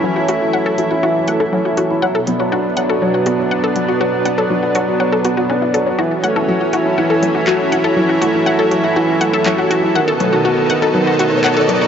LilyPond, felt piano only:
\new Staff \with { instrumentName = "Felt piano" } { \clef bass \time 4/4 \key fis \minor \tempo 4 = 121 e16 r16 a16 e16 cis'16 r16 e16 e'16 e16 r16 a16 e16 cis'16 r16 e16 e'16 | fis16 r16 b16 fis16 d'16 r16 fis16 fis'16 fis16 r16 b16 fis16 d'16 r16 fis16 fis'16 | fis16 r16 b16 fis16 d'16 r16 fis16 fis'16 fis16 r16 b16 fis16 d'16 r16 fis16 fis'16 | e16 r16 a16 e16 fis'16 r16 e16 e'16 e16 r16 a16 e16 fis'16 r16 e16 e'16 |
e16 r16 a16 e16 fis'16 r16 e16 e'16 e16 r16 a16 e16 fis'16 r16 e16 e'16 | dis16 r16 a16 dis16 fis'16 r16 dis16 dis'16 dis16 r16 a16 dis16 fis'16 r16 dis16 dis'16 | }